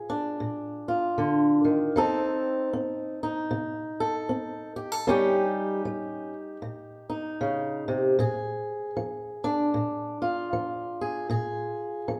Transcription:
0.00 0.32 F3 medium
0.00 0.88 F4 medium
0.00 1.91 G#4 medium
0.10 1.91 D4 medium
0.40 1.11 A#2 medium
0.88 1.92 F4 medium
1.18 1.64 D3 medium
1.65 1.95 D#3 medium
1.96 2.67 F3 medium
1.96 2.72 C4 medium
1.96 3.23 D#4 medium
1.96 3.99 A4 medium
2.73 3.45 C4 medium
3.23 5.04 D#4 medium
3.51 4.22 C3 medium
4.00 4.76 A4 medium
4.29 5.00 C4 medium
4.76 4.92 G4 medium
4.92 5.06 A4 soft
5.07 5.78 D#3 medium
5.07 5.84 G3 medium
5.07 6.33 C#4 medium
5.07 7.08 D#4 medium
5.07 8.19 G4 medium
5.85 6.56 G3 medium
6.62 7.34 A#2 medium
7.10 8.14 D#4 medium
7.41 7.88 C#3 medium
7.88 8.18 C3 medium
8.19 8.90 A#2 medium
8.19 11.00 G#4 medium
8.97 9.68 F3 medium
9.44 11.26 D4 medium
9.74 10.46 A#2 medium
10.22 12.20 F4 medium
10.53 11.24 F3 medium
11.01 11.27 G#4 medium
11.30 12.01 A#2 medium
11.30 12.20 G#4 medium
12.08 12.20 F3 medium

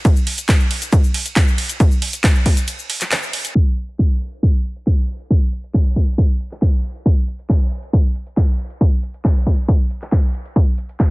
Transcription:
0.05 kick loud
0.05 closed hi-hat medium
0.05 ride medium
0.05 shaker medium
0.16 shaker soft
0.27 open hi-hat loud
0.27 ride medium
0.38 closed hi-hat medium
0.38 shaker medium
0.49 kick loud
0.49 clap loud
0.49 closed hi-hat medium
0.49 ride medium
0.49 shaker medium
0.60 shaker soft
0.71 open hi-hat medium
0.71 ride medium
0.82 closed hi-hat medium
0.82 shaker medium
0.93 kick loud
0.93 closed hi-hat medium
0.93 ride medium
0.93 shaker medium
1.04 shaker soft
1.14 open hi-hat loud
1.14 ride medium
1.26 closed hi-hat medium
1.26 shaker medium
1.36 kick loud
1.36 clap loud
1.36 closed hi-hat medium
1.36 ride medium
1.36 shaker medium
1.48 shaker soft
1.58 open hi-hat medium
1.58 ride medium
1.69 closed hi-hat medium
1.69 shaker medium
1.80 kick loud
1.80 closed hi-hat medium
1.80 ride medium
1.80 shaker medium
1.91 shaker soft
2.02 open hi-hat loud
2.02 ride medium
2.13 closed hi-hat medium
2.13 shaker medium
2.24 kick loud
2.24 clap loud
2.24 closed hi-hat medium
2.24 ride medium
2.24 shaker medium
2.35 shaker soft
2.46 kick medium
2.46 open hi-hat medium
2.46 ride medium
2.57 closed hi-hat medium
2.57 shaker medium
2.68 closed hi-hat medium
2.68 ride medium
2.68 shaker medium
2.79 shaker soft
2.90 open hi-hat loud
2.90 ride medium
3.01 clap soft
3.01 closed hi-hat medium
3.01 shaker medium
3.11 clap loud
3.11 closed hi-hat medium
3.11 ride medium
3.11 shaker medium
3.23 shaker soft
3.33 open hi-hat medium
3.33 ride medium
3.45 closed hi-hat medium
3.45 shaker medium
3.55 kick loud
3.55 closed hi-hat medium
3.77 closed hi-hat medium
3.89 closed hi-hat medium
3.99 kick loud
3.99 clap loud
4.21 closed hi-hat medium
4.32 closed hi-hat medium
4.43 kick loud
4.43 closed hi-hat medium
4.65 closed hi-hat medium
4.76 closed hi-hat medium
4.87 kick loud
4.87 clap loud
4.87 closed hi-hat medium
5.09 closed hi-hat medium
5.20 closed hi-hat medium
5.31 kick loud
5.31 closed hi-hat medium
5.52 closed hi-hat medium
5.64 closed hi-hat medium
5.74 kick loud
5.74 clap loud
5.74 closed hi-hat medium
5.96 kick medium
5.96 closed hi-hat medium
6.08 closed hi-hat medium
6.18 kick loud
6.18 closed hi-hat medium
6.40 closed hi-hat medium
6.51 clap soft
6.51 closed hi-hat medium
6.62 kick loud
6.62 clap loud
6.84 closed hi-hat loud
6.95 closed hi-hat medium
7.06 kick loud
7.06 closed hi-hat medium
7.28 closed hi-hat medium
7.39 closed hi-hat medium
7.50 kick loud
7.50 clap loud
7.50 closed hi-hat medium
7.71 closed hi-hat medium
7.83 closed hi-hat medium
7.93 kick loud
7.93 closed hi-hat medium
8.15 closed hi-hat medium
8.27 closed hi-hat medium
8.37 kick loud
8.37 clap loud
8.37 closed hi-hat medium
8.59 closed hi-hat loud
8.70 closed hi-hat medium
8.81 kick loud
8.81 closed hi-hat medium
9.03 closed hi-hat medium
9.14 closed hi-hat medium
9.25 kick loud
9.25 clap loud
9.25 closed hi-hat medium
9.47 kick medium
9.47 closed hi-hat medium
9.58 closed hi-hat medium
9.68 kick loud
9.68 closed hi-hat medium
9.90 closed hi-hat medium
10.02 clap soft
10.02 closed hi-hat medium
10.12 kick loud
10.12 clap loud
10.12 closed hi-hat medium
10.34 closed hi-hat medium
10.45 closed hi-hat medium
10.56 kick loud
10.56 closed hi-hat medium
10.78 closed hi-hat medium
10.89 closed hi-hat medium
11.00 kick loud
11.00 clap loud
11.00 closed hi-hat medium

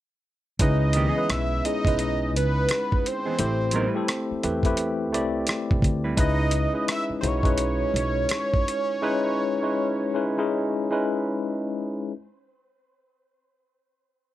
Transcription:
0.59 1.07 C#2 loud
0.59 1.11 G#3 medium
0.59 1.11 C#4 medium
0.59 1.11 D#4 medium
0.59 1.12 E4 medium
0.59 1.12 B4 loud
0.59 1.32 D#5 loud
0.59 kick loud
0.59 closed hi-hat medium
0.93 1.08 D#3 medium
0.93 1.09 A#3 medium
0.93 1.10 D4 medium
0.93 1.10 G4 medium
0.93 closed hi-hat medium
1.08 1.27 E3 medium
1.08 1.28 B3 medium
1.08 1.28 D#4 medium
1.08 1.28 G#4 medium
1.16 1.61 G#3 medium
1.16 1.62 B3 medium
1.16 1.61 C#4 medium
1.16 1.62 E4 medium
1.16 1.62 B4 medium
1.30 1.59 B1 medium
1.30 1.65 E5 loud
1.30 cross-stick loud
1.30 closed hi-hat medium
1.65 1.84 G#3 medium
1.65 1.85 C#4 medium
1.65 1.85 D#4 medium
1.65 1.85 E4 medium
1.65 1.85 G#4 medium
1.65 2.31 D#5 loud
1.65 closed hi-hat medium
1.85 2.35 B1 medium
1.85 3.12 G#3 medium
1.85 3.13 C#4 medium
1.85 3.13 D#4 medium
1.85 3.13 E4 medium
1.85 3.13 B4 medium
1.85 kick medium
1.85 closed hi-hat soft
1.99 closed hi-hat medium
2.35 2.64 C#2 medium
2.35 3.09 B4 loud
2.35 closed hi-hat medium
2.69 cross-stick loud
2.69 closed hi-hat medium
2.92 kick medium
3.06 4.45 C5 medium
3.06 closed hi-hat medium
3.26 3.37 E3 medium
3.26 3.37 B3 medium
3.26 3.37 D#4 medium
3.26 3.36 G#4 medium
3.38 3.86 A1 medium
3.38 3.90 A3 medium
3.38 3.90 C4 medium
3.38 3.90 E4 medium
3.38 3.91 G4 medium
3.38 3.91 C5 loud
3.38 closed hi-hat medium
3.71 3.87 F#3 medium
3.71 3.88 B3 medium
3.71 closed hi-hat medium
3.75 3.88 D#4 medium
3.75 3.89 A#4 medium
3.87 4.06 G3 medium
3.87 4.07 C4 medium
3.87 4.07 E4 medium
3.87 4.07 B4 medium
3.95 4.40 A3 medium
3.95 4.40 C4 medium
3.95 4.40 E4 medium
3.95 4.41 G4 medium
3.95 4.41 A4 medium
4.08 cross-stick loud
4.08 closed hi-hat medium
4.31 muted upright bass stroke soft
4.43 5.13 E2 medium
4.43 4.63 A3 medium
4.43 4.63 C4 medium
4.43 4.63 E4 medium
4.43 4.63 G4 medium
4.43 4.64 B4 medium
4.43 closed hi-hat medium
4.63 5.10 A3 medium
4.63 5.10 C4 medium
4.63 5.10 E4 medium
4.63 5.11 G4 medium
4.63 5.11 B4 medium
4.63 kick medium
4.63 closed hi-hat soft
4.77 closed hi-hat medium
5.13 5.42 C2 medium
5.13 6.11 A3 medium
5.13 6.12 C4 medium
5.13 6.12 E4 medium
5.13 6.12 G4 medium
5.13 6.12 D5 loud
5.13 closed hi-hat medium
5.47 cross-stick loud
5.47 closed hi-hat medium
5.71 5.83 B1 medium
5.71 kick medium
5.82 6.12 D2 medium
5.82 kick medium
5.82 closed hi-hat medium
6.04 6.16 G3 medium
6.04 6.16 C4 medium
6.04 6.16 E4 medium
6.04 6.15 B4 medium
6.16 6.65 C#2 medium
6.16 6.68 G#3 medium
6.16 6.69 C#4 medium
6.16 6.69 D#4 medium
6.16 6.69 E4 loud
6.16 6.69 B4 loud
6.16 6.85 D#5 loud
6.16 kick loud
6.16 closed hi-hat medium
6.51 closed hi-hat medium
6.73 7.19 G#3 medium
6.73 7.19 C#4 medium
6.73 7.20 D#4 medium
6.73 7.20 E4 medium
6.73 7.20 B4 medium
6.88 7.04 E5 loud
6.88 cross-stick medium
6.88 closed hi-hat medium
7.10 muted upright bass stroke soft
7.21 7.82 B1 medium
7.21 7.42 G#3 medium
7.21 7.43 C#4 medium
7.21 7.43 D#4 medium
7.21 7.43 E4 medium
7.21 7.43 F#4 medium
7.21 7.29 C5 medium
7.21 closed hi-hat medium
7.27 11.33 C#5 loud
7.43 8.74 G#3 medium
7.43 8.74 C#4 medium
7.43 8.74 D#4 medium
7.43 8.75 E4 medium
7.43 8.75 B4 medium
7.43 kick medium
7.43 closed hi-hat soft
7.58 closed hi-hat medium
7.94 8.24 B1 medium
7.94 closed hi-hat medium
8.29 cross-stick loud
8.29 closed hi-hat medium
8.54 kick medium
8.68 closed hi-hat medium
9.02 9.57 G#3 loud
9.02 9.57 C#4 loud
9.02 9.57 D#4 loud
9.02 9.57 E4 loud
9.02 9.57 B4 loud
9.62 10.11 G#3 medium
9.62 10.11 C#4 medium
9.62 10.11 D#4 medium
9.62 10.12 E4 medium
9.62 10.12 B4 medium
10.14 10.36 G#3 medium
10.14 10.36 C#4 medium
10.14 10.36 D#4 medium
10.14 10.37 E4 medium
10.14 10.37 B4 medium
10.38 10.88 G#3 medium
10.38 10.88 C#4 medium
10.38 10.88 D#4 medium
10.38 10.89 E4 medium
10.38 10.89 G#4 medium
10.91 12.04 G#3 medium
10.91 12.04 C#4 medium
10.91 12.04 D#4 medium
10.91 12.05 E4 medium
10.91 12.05 B4 medium

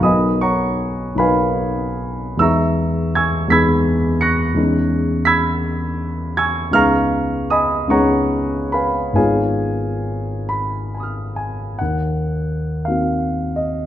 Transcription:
0.00 1.13 B1 soft
0.00 1.14 F#3 soft
0.00 1.14 B3 soft
0.00 1.15 D#4 soft
0.00 0.40 D#5 medium
0.00 0.40 G#5 medium
0.00 0.40 B5 medium
0.00 0.42 D#6 medium
0.04 1.15 A#4 soft
0.41 1.15 C#5 soft
0.41 1.15 F#5 soft
0.41 1.15 A#5 soft
0.41 1.18 C#6 medium
1.15 2.36 B1 soft
1.15 2.37 F#3 soft
1.15 2.37 B3 soft
1.15 2.38 D#4 soft
1.15 2.38 A#4 soft
1.15 2.38 B4 medium
1.15 2.38 F5 medium
1.15 2.41 B5 medium
1.19 2.38 G#5 medium
2.37 3.46 E2 soft
2.37 3.47 G#3 soft
2.37 3.47 B3 soft
2.37 3.48 D#4 soft
2.37 3.12 C#6 medium
2.37 3.15 E6 medium
2.41 3.49 G#4 soft
2.41 3.13 E5 medium
2.41 3.13 A#5 medium
3.15 3.50 G#5 medium
3.15 3.50 C#6 medium
3.15 3.50 E6 medium
3.15 3.50 G#6 medium
3.48 4.52 E2 soft
3.48 4.53 G#3 soft
3.48 4.53 B3 soft
3.48 4.54 D#4 soft
3.48 4.19 E6 medium
3.48 4.22 B6 medium
3.52 4.55 G#4 soft
3.52 4.19 B5 medium
3.52 4.19 G#6 medium
4.21 5.24 C#6 medium
4.21 5.23 F#6 medium
4.21 5.23 A#6 medium
4.21 5.27 C#7 medium
4.55 6.70 E2 soft
4.55 6.70 G#3 soft
4.55 6.70 C#4 soft
4.55 6.71 D#4 soft
4.55 6.71 G#4 soft
5.25 6.34 B5 medium
5.25 6.34 E6 medium
5.25 6.34 G#6 medium
5.25 6.37 B6 medium
6.37 6.73 G#5 medium
6.37 6.72 C#6 medium
6.37 6.72 E6 medium
6.37 6.75 G#6 medium
6.71 7.86 C#2 soft
6.71 7.87 G#3 soft
6.71 7.87 B3 soft
6.71 7.87 D#4 soft
6.71 7.47 F5 medium
6.71 7.50 F6 medium
6.75 7.88 G#4 soft
6.75 7.47 A#5 medium
6.75 7.47 C#6 medium
7.50 7.89 D#5 medium
7.50 7.89 G#5 medium
7.50 7.89 B5 medium
7.50 7.91 D#6 medium
7.88 9.11 C#2 soft
7.88 9.12 G#3 soft
7.88 9.12 B3 soft
7.88 9.12 D#4 soft
7.88 9.13 G#4 soft
7.88 8.69 C#5 medium
7.88 8.69 F#5 medium
7.88 8.69 A#5 medium
7.88 8.73 C#6 medium
8.72 9.14 B4 soft
8.72 9.14 F5 soft
8.72 9.14 G#5 soft
8.72 9.16 B5 medium
9.13 11.74 G#1 soft
9.13 11.74 G#3 soft
9.13 11.75 B3 soft
9.13 11.75 D#4 soft
9.13 11.76 F4 soft
9.13 11.35 G#4 soft
9.13 11.34 C#5 soft
9.13 11.34 F5 medium
9.13 10.93 G#5 medium
10.49 10.96 B5 medium
10.95 11.35 G#5 soft
10.95 11.77 B5 soft
11.00 11.79 D#6 soft
11.00 11.80 F6 soft
11.36 11.79 G#5 medium
11.79 12.84 D#2 soft
11.79 12.86 F#5 medium
12.85 13.86 A#3 soft
12.85 13.86 C4 soft
12.85 13.86 D#4 soft
12.85 13.86 F#4 soft
12.85 13.56 F5 medium
13.56 13.86 D#5 soft

